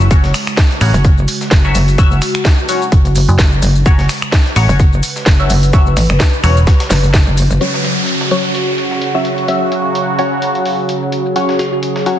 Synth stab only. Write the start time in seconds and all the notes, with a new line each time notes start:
0.11 F#3 C#4 F#4 C#5
0.81 F#3 C#4 F#4 C#5
1.65 F#3 C#4 F#4 E5
1.98 F#3 C#4 F#4 E5
2.69 F#3 C#4 F#4 C#5
3.86 F#3 C#4 F#4 C#5
4.56 F#3 C#4 F#4 C#5
5.40 F#3 C#4 F#4 E5
5.73 F#3 C#4 F#4 E5
6.44 F#3 C#4 F#4 C#5
7.61 F#3 C#4 F#4 C#5
8.31 F#3 C#4 F#4 C#5
9.15 F#3 C#4 F#4 E5
9.48 F#3 C#4 F#4 E5
10.19 F#3 C#4 F#4 C#5
11.36 F#3 C#4 F#4 C#5
12.06 F#3 C#4 F#4 C#5